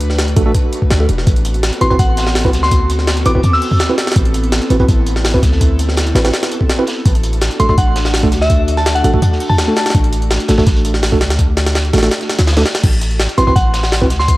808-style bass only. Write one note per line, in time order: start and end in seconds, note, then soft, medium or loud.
0.00 0.35 D2 medium
0.37 0.53 A1 medium
0.91 1.07 D2 medium
1.09 1.25 E1 medium
1.27 1.71 A1 loud
1.81 1.98 A1 medium
1.99 2.55 A1 medium
2.54 3.24 D2 medium
3.26 3.42 A1 medium
4.16 4.60 A1 loud
4.70 4.87 A1 medium
4.89 5.44 A1 medium
5.43 6.14 D2 medium
6.15 6.31 A1 medium
7.06 7.49 A1 loud
7.60 7.76 A1 medium
7.78 8.33 A1 medium
8.32 9.03 D2 medium
9.04 9.21 A1 medium
9.95 10.39 A1 loud
10.49 10.65 A1 medium
10.67 11.23 A1 medium
11.21 11.92 D2 medium
11.94 12.10 A1 medium
12.39 12.64 D2 medium
12.84 13.28 A1 loud
13.38 13.54 A1 medium
13.56 14.12 A1 medium
14.10 14.37 D2 medium